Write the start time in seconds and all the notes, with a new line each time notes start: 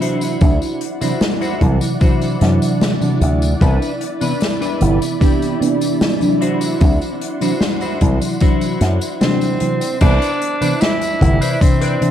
Already playing: C3 E3 F#3 D4 E4
0.01 E4 F#4 C5 D5 F#5, closed hi-hat
0.21 closed hi-hat, tambourine
0.41 D2 C3 E3 F#3 D4, kick, closed hi-hat, tambourine
0.62 closed hi-hat, tambourine
0.81 closed hi-hat
1.01 C3 E3 F#3 D4 E4 F#4 C5, closed hi-hat, tambourine
1.21 snare, closed hi-hat, tambourine
1.41 E4 F#4 C5, closed hi-hat, tambourine
1.61 C2 C3 E3 F#3 E4, kick, closed hi-hat
1.81 muted clean electric guitar stroke, closed hi-hat, tambourine
2.00 C3 E3 F#3 D4 E4 F#4 C5, kick, closed hi-hat, tambourine
2.21 closed hi-hat, tambourine
2.41 F#2 C3 E3 F#3 D4, snare, closed hi-hat
2.62 closed hi-hat, tambourine
2.81 snare, closed hi-hat, tambourine
3.01 C3 E3 F#3 D4, closed hi-hat, tambourine
3.21 D2, closed hi-hat
3.42 closed hi-hat, tambourine
3.61 C2 C3 E3 B3 D4 E4 B4 B5, kick, closed hi-hat, tambourine
3.82 closed hi-hat, tambourine
4.01 closed hi-hat
4.21 C3 E3 B3 D4 E4 B4, closed hi-hat, tambourine
4.40 snare, closed hi-hat, tambourine
4.61 D4 E4 B4, closed hi-hat, tambourine
4.80 G1 C3 E3 B3 E4, closed hi-hat
5.01 muted clean electric guitar stroke, closed hi-hat, tambourine
5.20 C3 E3 B3 D4 E4 G4, kick, closed hi-hat, tambourine
5.42 closed hi-hat, tambourine
5.60 C3 E3 B3 D4, closed hi-hat
5.81 closed hi-hat, tambourine
6.01 snare, closed hi-hat, tambourine
6.20 C3 E3 F#3 D4, closed hi-hat, tambourine
6.41 E4 F#4 C5 F#5 C6, closed hi-hat
6.61 closed hi-hat, tambourine
6.80 D2 C3 E3 F#3 D4, kick, closed hi-hat, tambourine
7.01 closed hi-hat, tambourine
7.21 closed hi-hat
7.41 C3 E3 F#3 D4 E4 F#4 C5, closed hi-hat, tambourine
7.61 snare, closed hi-hat, tambourine
7.81 E4 F#4 C5, closed hi-hat, tambourine
8.01 C2 C3 E3 F#3 E4, kick, closed hi-hat
8.21 muted clean electric guitar stroke, closed hi-hat, tambourine
8.40 C3 E3 F#3 D4 E4 F#4 C5, kick, closed hi-hat, tambourine
8.61 closed hi-hat, tambourine
8.81 F#2, snare, closed hi-hat
9.01 closed hi-hat, tambourine
9.21 C3 E3 F#3 C4 D4, snare, closed hi-hat, tambourine
9.41 closed hi-hat, tambourine
9.60 C3 E3 F#3 C4, closed hi-hat
9.81 closed hi-hat, tambourine
10.01 C2 C3 E3 B3 D4 E4 B4 C5 D5, kick, closed hi-hat, crash, tambourine
10.22 closed hi-hat, tambourine
10.42 closed hi-hat
10.61 C3 E3 B3 D4 E4 B4 C5 D5, closed hi-hat, tambourine
10.81 E4, snare, closed hi-hat, tambourine
11.01 closed hi-hat, tambourine
11.21 G1 C3 E3 E4, kick, closed hi-hat
11.41 E4 B4 C5 D5, closed hi-hat, tambourine
11.61 C3 E3 C4 D4, kick, closed hi-hat, tambourine
11.81 E4 B4 C5 D5, closed hi-hat, tambourine
12.01 C3 E3 D4, closed hi-hat